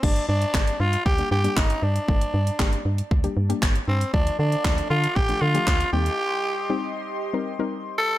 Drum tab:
CC |x---------------|----------------|----------------|----------------|
HH |-x-x-x-x-x-x-x-x|-x-x-x-x-x-x-x-x|-x-x-x-x-x-x-x-x|----------------|
CP |----x-------x---|----x-------x---|----x-------x---|----------------|
SD |----o-------o---|----o-------o---|----o-------o---|----------------|
BD |o---o---o---o---|o---o---o---o---|o---o---o---o---|----------------|